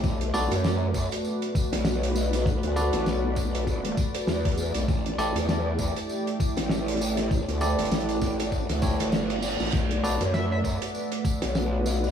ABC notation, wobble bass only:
X:1
M:4/4
L:1/16
Q:"Swing 16ths" 1/4=99
K:Bm
V:1 name="Wobble bass" clef=bass
B,,,2 B,,, F,,4 z4 B,,,4- B,,,- | B,,, D,,2 A,,, B,,,6 z2 E,,3 B,,, | A,,,2 A,,, E,,4 z4 A,,,4- A,,,- | A,,, D,,2 G,,, A,,,2 A,,,3 D,,2 G,,,4 A,,, |
B,,,2 B,,, F,,4 z4 B,,,4- B,,, |]